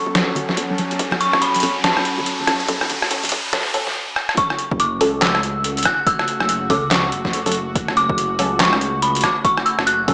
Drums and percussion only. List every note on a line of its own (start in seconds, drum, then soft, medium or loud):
0.06 high bongo medium
0.15 snare loud
0.15 closed hi-hat medium
0.15 high conga medium
0.35 closed hi-hat medium
0.35 high bongo soft
0.35 low conga medium
0.49 kick medium
0.49 snare soft
0.49 high conga medium
0.57 closed hi-hat medium
0.57 high bongo medium
0.78 closed hi-hat medium
0.78 high conga medium
0.91 closed hi-hat soft
0.91 high bongo medium
0.99 kick loud
0.99 closed hi-hat medium
1.11 cross-stick medium
1.11 high bongo medium
1.11 high conga loud
1.21 closed hi-hat soft
1.33 kick loud
1.33 cross-stick medium
1.41 closed hi-hat medium
1.41 high bongo medium
1.54 closed hi-hat soft
1.54 closed hi-hat medium
1.54 high conga medium
1.60 closed hi-hat medium
1.60 open hi-hat medium
1.60 high bongo medium
1.84 snare loud
1.84 closed hi-hat medium
1.84 high conga medium
1.96 cross-stick medium
1.96 high bongo medium
2.05 closed hi-hat medium
2.18 high bongo medium
2.18 high conga medium
2.18 low conga medium
2.26 closed hi-hat medium
2.40 low conga medium
2.47 kick medium
2.47 cross-stick medium
2.47 closed hi-hat medium
2.47 high bongo medium
2.47 high conga loud
2.60 closed hi-hat soft
2.68 kick loud
2.68 closed hi-hat medium
2.68 high bongo medium
2.81 cross-stick medium
2.81 high conga medium
2.90 closed hi-hat soft
2.90 low conga medium
3.02 cross-stick medium
3.02 high bongo medium
3.11 closed hi-hat medium
3.23 closed hi-hat soft
3.23 closed hi-hat medium
3.23 high bongo medium
3.23 high conga medium
3.29 kick loud
3.29 closed hi-hat medium
3.29 open hi-hat medium
3.53 snare loud
3.53 closed hi-hat medium
3.53 high bongo soft
3.53 high conga loud
3.74 closed hi-hat medium
3.74 high bongo medium
3.74 low conga medium
3.87 kick medium
3.87 snare soft
3.87 high conga medium
4.16 cross-stick medium
4.29 cross-stick medium
4.37 kick loud
4.37 closed hi-hat medium
4.50 cross-stick medium
4.59 closed hi-hat medium
4.71 kick loud
4.80 closed hi-hat medium
5.01 open hi-hat medium
5.22 snare loud
5.22 clap medium
5.22 closed hi-hat medium
5.35 cross-stick medium
5.43 closed hi-hat medium
5.64 closed hi-hat medium
5.77 closed hi-hat medium
5.83 kick medium
5.83 cross-stick medium
5.83 closed hi-hat medium
5.85 closed hi-hat medium
6.07 kick loud
6.07 closed hi-hat medium
6.19 cross-stick medium
6.28 closed hi-hat medium
6.40 cross-stick medium
6.49 closed hi-hat medium
6.70 kick loud
6.70 open hi-hat medium
6.91 snare loud
6.91 clap medium
6.91 closed hi-hat medium
7.12 closed hi-hat medium
7.25 kick medium
7.25 snare soft
7.33 closed hi-hat medium
7.46 closed hi-hat medium
7.52 closed hi-hat medium
7.54 closed hi-hat medium
7.76 kick loud
7.76 closed hi-hat medium
7.88 cross-stick medium
7.97 closed hi-hat medium
8.09 kick loud
8.18 closed hi-hat medium
8.39 open hi-hat medium
8.60 snare loud
8.60 clap medium
8.60 closed hi-hat medium
8.73 cross-stick medium
8.81 closed hi-hat medium
9.02 closed hi-hat medium
9.15 closed hi-hat soft
9.15 closed hi-hat medium
9.21 kick medium
9.21 cross-stick medium
9.21 closed hi-hat medium
9.24 closed hi-hat medium
9.45 kick loud
9.45 closed hi-hat medium
9.58 cross-stick medium
9.66 closed hi-hat soft
9.79 cross-stick medium
9.87 closed hi-hat medium
10.08 kick loud
10.08 open hi-hat medium